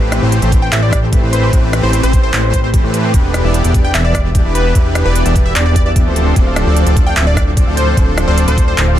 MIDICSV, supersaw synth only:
0, 0, Header, 1, 2, 480
1, 0, Start_track
1, 0, Key_signature, 0, "minor"
1, 0, Tempo, 402685
1, 1824, Time_signature, 4, 2, 24, 8
1, 10721, End_track
2, 0, Start_track
2, 0, Title_t, "Supersaw synth"
2, 0, Program_c, 0, 81
2, 0, Note_on_c, 0, 52, 95
2, 0, Note_on_c, 0, 57, 91
2, 0, Note_on_c, 0, 60, 86
2, 0, Note_on_c, 0, 67, 87
2, 0, Note_on_c, 0, 71, 107
2, 236, Note_off_c, 0, 52, 0
2, 236, Note_off_c, 0, 57, 0
2, 236, Note_off_c, 0, 60, 0
2, 236, Note_off_c, 0, 67, 0
2, 236, Note_off_c, 0, 71, 0
2, 265, Note_on_c, 0, 67, 82
2, 266, Note_on_c, 0, 52, 94
2, 266, Note_on_c, 0, 57, 83
2, 266, Note_on_c, 0, 60, 86
2, 266, Note_on_c, 0, 72, 101
2, 476, Note_off_c, 0, 52, 0
2, 476, Note_off_c, 0, 57, 0
2, 476, Note_off_c, 0, 60, 0
2, 476, Note_off_c, 0, 67, 0
2, 476, Note_off_c, 0, 72, 0
2, 506, Note_on_c, 0, 52, 76
2, 506, Note_on_c, 0, 57, 69
2, 506, Note_on_c, 0, 60, 69
2, 506, Note_on_c, 0, 67, 71
2, 506, Note_on_c, 0, 72, 84
2, 836, Note_off_c, 0, 52, 0
2, 836, Note_off_c, 0, 57, 0
2, 836, Note_off_c, 0, 60, 0
2, 836, Note_off_c, 0, 67, 0
2, 836, Note_off_c, 0, 72, 0
2, 865, Note_on_c, 0, 57, 89
2, 865, Note_on_c, 0, 67, 89
2, 865, Note_on_c, 0, 72, 107
2, 866, Note_on_c, 0, 52, 95
2, 866, Note_on_c, 0, 60, 90
2, 1436, Note_off_c, 0, 52, 0
2, 1436, Note_off_c, 0, 57, 0
2, 1436, Note_off_c, 0, 67, 0
2, 1436, Note_off_c, 0, 72, 0
2, 1437, Note_off_c, 0, 60, 0
2, 1464, Note_on_c, 0, 52, 84
2, 1464, Note_on_c, 0, 57, 77
2, 1464, Note_on_c, 0, 60, 78
2, 1464, Note_on_c, 0, 71, 91
2, 1465, Note_on_c, 0, 67, 75
2, 1795, Note_off_c, 0, 52, 0
2, 1795, Note_off_c, 0, 57, 0
2, 1795, Note_off_c, 0, 60, 0
2, 1795, Note_off_c, 0, 67, 0
2, 1795, Note_off_c, 0, 71, 0
2, 1822, Note_on_c, 0, 67, 89
2, 1822, Note_on_c, 0, 71, 107
2, 1823, Note_on_c, 0, 52, 96
2, 1823, Note_on_c, 0, 57, 86
2, 1823, Note_on_c, 0, 60, 89
2, 2155, Note_off_c, 0, 52, 0
2, 2155, Note_off_c, 0, 57, 0
2, 2155, Note_off_c, 0, 60, 0
2, 2155, Note_off_c, 0, 67, 0
2, 2155, Note_off_c, 0, 71, 0
2, 2184, Note_on_c, 0, 52, 93
2, 2184, Note_on_c, 0, 57, 86
2, 2184, Note_on_c, 0, 60, 84
2, 2184, Note_on_c, 0, 67, 85
2, 2184, Note_on_c, 0, 72, 101
2, 2395, Note_off_c, 0, 52, 0
2, 2395, Note_off_c, 0, 57, 0
2, 2395, Note_off_c, 0, 60, 0
2, 2395, Note_off_c, 0, 67, 0
2, 2395, Note_off_c, 0, 72, 0
2, 2423, Note_on_c, 0, 52, 74
2, 2423, Note_on_c, 0, 57, 69
2, 2423, Note_on_c, 0, 60, 67
2, 2423, Note_on_c, 0, 67, 69
2, 2423, Note_on_c, 0, 72, 82
2, 2754, Note_off_c, 0, 52, 0
2, 2754, Note_off_c, 0, 57, 0
2, 2754, Note_off_c, 0, 60, 0
2, 2754, Note_off_c, 0, 72, 0
2, 2755, Note_off_c, 0, 67, 0
2, 2782, Note_on_c, 0, 52, 95
2, 2782, Note_on_c, 0, 57, 89
2, 2782, Note_on_c, 0, 67, 87
2, 2783, Note_on_c, 0, 60, 90
2, 2783, Note_on_c, 0, 72, 105
2, 3355, Note_off_c, 0, 52, 0
2, 3355, Note_off_c, 0, 57, 0
2, 3355, Note_off_c, 0, 60, 0
2, 3355, Note_off_c, 0, 67, 0
2, 3355, Note_off_c, 0, 72, 0
2, 3383, Note_on_c, 0, 52, 81
2, 3383, Note_on_c, 0, 57, 75
2, 3383, Note_on_c, 0, 60, 78
2, 3383, Note_on_c, 0, 67, 76
2, 3383, Note_on_c, 0, 71, 94
2, 3714, Note_off_c, 0, 60, 0
2, 3715, Note_off_c, 0, 52, 0
2, 3715, Note_off_c, 0, 57, 0
2, 3715, Note_off_c, 0, 67, 0
2, 3715, Note_off_c, 0, 71, 0
2, 3743, Note_on_c, 0, 52, 96
2, 3743, Note_on_c, 0, 59, 86
2, 3743, Note_on_c, 0, 62, 88
2, 3743, Note_on_c, 0, 67, 86
2, 3743, Note_on_c, 0, 71, 108
2, 4075, Note_off_c, 0, 52, 0
2, 4075, Note_off_c, 0, 59, 0
2, 4075, Note_off_c, 0, 62, 0
2, 4075, Note_off_c, 0, 67, 0
2, 4075, Note_off_c, 0, 71, 0
2, 4103, Note_on_c, 0, 62, 85
2, 4103, Note_on_c, 0, 67, 83
2, 4104, Note_on_c, 0, 52, 92
2, 4104, Note_on_c, 0, 59, 86
2, 4104, Note_on_c, 0, 74, 102
2, 4315, Note_off_c, 0, 52, 0
2, 4315, Note_off_c, 0, 59, 0
2, 4315, Note_off_c, 0, 62, 0
2, 4315, Note_off_c, 0, 67, 0
2, 4315, Note_off_c, 0, 74, 0
2, 4344, Note_on_c, 0, 62, 70
2, 4344, Note_on_c, 0, 74, 83
2, 4345, Note_on_c, 0, 52, 75
2, 4345, Note_on_c, 0, 59, 70
2, 4345, Note_on_c, 0, 67, 70
2, 4675, Note_off_c, 0, 52, 0
2, 4675, Note_off_c, 0, 59, 0
2, 4675, Note_off_c, 0, 62, 0
2, 4675, Note_off_c, 0, 67, 0
2, 4675, Note_off_c, 0, 74, 0
2, 4703, Note_on_c, 0, 52, 96
2, 4703, Note_on_c, 0, 59, 88
2, 4703, Note_on_c, 0, 62, 88
2, 4703, Note_on_c, 0, 67, 88
2, 4703, Note_on_c, 0, 74, 104
2, 5275, Note_off_c, 0, 52, 0
2, 5275, Note_off_c, 0, 59, 0
2, 5275, Note_off_c, 0, 62, 0
2, 5275, Note_off_c, 0, 67, 0
2, 5275, Note_off_c, 0, 74, 0
2, 5305, Note_on_c, 0, 62, 74
2, 5305, Note_on_c, 0, 71, 90
2, 5306, Note_on_c, 0, 52, 81
2, 5306, Note_on_c, 0, 59, 78
2, 5306, Note_on_c, 0, 67, 74
2, 5636, Note_off_c, 0, 52, 0
2, 5636, Note_off_c, 0, 59, 0
2, 5636, Note_off_c, 0, 62, 0
2, 5636, Note_off_c, 0, 67, 0
2, 5636, Note_off_c, 0, 71, 0
2, 5664, Note_on_c, 0, 52, 96
2, 5664, Note_on_c, 0, 59, 87
2, 5664, Note_on_c, 0, 62, 88
2, 5664, Note_on_c, 0, 67, 90
2, 5664, Note_on_c, 0, 71, 106
2, 5996, Note_off_c, 0, 52, 0
2, 5996, Note_off_c, 0, 59, 0
2, 5996, Note_off_c, 0, 62, 0
2, 5996, Note_off_c, 0, 67, 0
2, 5996, Note_off_c, 0, 71, 0
2, 6025, Note_on_c, 0, 52, 91
2, 6025, Note_on_c, 0, 62, 84
2, 6025, Note_on_c, 0, 74, 101
2, 6026, Note_on_c, 0, 59, 83
2, 6026, Note_on_c, 0, 67, 83
2, 6236, Note_off_c, 0, 52, 0
2, 6236, Note_off_c, 0, 59, 0
2, 6236, Note_off_c, 0, 62, 0
2, 6236, Note_off_c, 0, 67, 0
2, 6236, Note_off_c, 0, 74, 0
2, 6266, Note_on_c, 0, 59, 70
2, 6266, Note_on_c, 0, 67, 68
2, 6266, Note_on_c, 0, 74, 85
2, 6267, Note_on_c, 0, 52, 76
2, 6267, Note_on_c, 0, 62, 70
2, 6596, Note_off_c, 0, 52, 0
2, 6596, Note_off_c, 0, 59, 0
2, 6596, Note_off_c, 0, 62, 0
2, 6596, Note_off_c, 0, 67, 0
2, 6596, Note_off_c, 0, 74, 0
2, 6625, Note_on_c, 0, 59, 87
2, 6625, Note_on_c, 0, 62, 90
2, 6626, Note_on_c, 0, 52, 95
2, 6626, Note_on_c, 0, 67, 90
2, 6626, Note_on_c, 0, 74, 106
2, 7196, Note_off_c, 0, 59, 0
2, 7196, Note_off_c, 0, 62, 0
2, 7196, Note_off_c, 0, 67, 0
2, 7196, Note_off_c, 0, 74, 0
2, 7197, Note_off_c, 0, 52, 0
2, 7226, Note_on_c, 0, 53, 84
2, 7226, Note_on_c, 0, 60, 76
2, 7226, Note_on_c, 0, 62, 77
2, 7226, Note_on_c, 0, 69, 77
2, 7226, Note_on_c, 0, 72, 90
2, 7556, Note_off_c, 0, 53, 0
2, 7556, Note_off_c, 0, 60, 0
2, 7556, Note_off_c, 0, 62, 0
2, 7556, Note_off_c, 0, 69, 0
2, 7556, Note_off_c, 0, 72, 0
2, 7584, Note_on_c, 0, 72, 104
2, 7585, Note_on_c, 0, 53, 98
2, 7585, Note_on_c, 0, 60, 89
2, 7585, Note_on_c, 0, 62, 87
2, 7585, Note_on_c, 0, 69, 88
2, 7916, Note_off_c, 0, 53, 0
2, 7916, Note_off_c, 0, 60, 0
2, 7916, Note_off_c, 0, 62, 0
2, 7916, Note_off_c, 0, 69, 0
2, 7916, Note_off_c, 0, 72, 0
2, 7945, Note_on_c, 0, 53, 92
2, 7945, Note_on_c, 0, 60, 85
2, 7945, Note_on_c, 0, 62, 84
2, 7945, Note_on_c, 0, 69, 86
2, 7946, Note_on_c, 0, 74, 101
2, 8156, Note_off_c, 0, 53, 0
2, 8156, Note_off_c, 0, 60, 0
2, 8156, Note_off_c, 0, 62, 0
2, 8156, Note_off_c, 0, 69, 0
2, 8156, Note_off_c, 0, 74, 0
2, 8185, Note_on_c, 0, 53, 75
2, 8185, Note_on_c, 0, 60, 68
2, 8185, Note_on_c, 0, 69, 68
2, 8185, Note_on_c, 0, 74, 82
2, 8186, Note_on_c, 0, 62, 69
2, 8515, Note_off_c, 0, 53, 0
2, 8516, Note_off_c, 0, 60, 0
2, 8516, Note_off_c, 0, 62, 0
2, 8516, Note_off_c, 0, 69, 0
2, 8516, Note_off_c, 0, 74, 0
2, 8545, Note_on_c, 0, 60, 88
2, 8545, Note_on_c, 0, 62, 85
2, 8545, Note_on_c, 0, 69, 89
2, 8545, Note_on_c, 0, 74, 105
2, 8546, Note_on_c, 0, 53, 96
2, 9116, Note_off_c, 0, 53, 0
2, 9116, Note_off_c, 0, 60, 0
2, 9116, Note_off_c, 0, 62, 0
2, 9116, Note_off_c, 0, 69, 0
2, 9116, Note_off_c, 0, 74, 0
2, 9145, Note_on_c, 0, 60, 78
2, 9145, Note_on_c, 0, 62, 78
2, 9146, Note_on_c, 0, 53, 86
2, 9146, Note_on_c, 0, 69, 78
2, 9146, Note_on_c, 0, 72, 91
2, 9476, Note_off_c, 0, 53, 0
2, 9476, Note_off_c, 0, 60, 0
2, 9476, Note_off_c, 0, 62, 0
2, 9476, Note_off_c, 0, 69, 0
2, 9476, Note_off_c, 0, 72, 0
2, 9504, Note_on_c, 0, 53, 96
2, 9504, Note_on_c, 0, 60, 86
2, 9504, Note_on_c, 0, 62, 89
2, 9504, Note_on_c, 0, 69, 88
2, 9504, Note_on_c, 0, 72, 106
2, 9836, Note_off_c, 0, 53, 0
2, 9836, Note_off_c, 0, 60, 0
2, 9836, Note_off_c, 0, 62, 0
2, 9836, Note_off_c, 0, 69, 0
2, 9836, Note_off_c, 0, 72, 0
2, 9863, Note_on_c, 0, 60, 84
2, 9863, Note_on_c, 0, 69, 84
2, 9864, Note_on_c, 0, 53, 92
2, 9864, Note_on_c, 0, 62, 83
2, 9864, Note_on_c, 0, 74, 99
2, 10075, Note_off_c, 0, 53, 0
2, 10075, Note_off_c, 0, 60, 0
2, 10075, Note_off_c, 0, 62, 0
2, 10075, Note_off_c, 0, 69, 0
2, 10075, Note_off_c, 0, 74, 0
2, 10104, Note_on_c, 0, 53, 75
2, 10104, Note_on_c, 0, 60, 68
2, 10104, Note_on_c, 0, 62, 71
2, 10104, Note_on_c, 0, 69, 71
2, 10105, Note_on_c, 0, 74, 81
2, 10435, Note_off_c, 0, 53, 0
2, 10435, Note_off_c, 0, 60, 0
2, 10435, Note_off_c, 0, 62, 0
2, 10435, Note_off_c, 0, 69, 0
2, 10435, Note_off_c, 0, 74, 0
2, 10463, Note_on_c, 0, 53, 93
2, 10463, Note_on_c, 0, 60, 90
2, 10463, Note_on_c, 0, 62, 88
2, 10463, Note_on_c, 0, 69, 87
2, 10464, Note_on_c, 0, 74, 105
2, 10721, Note_off_c, 0, 53, 0
2, 10721, Note_off_c, 0, 60, 0
2, 10721, Note_off_c, 0, 62, 0
2, 10721, Note_off_c, 0, 69, 0
2, 10721, Note_off_c, 0, 74, 0
2, 10721, End_track
0, 0, End_of_file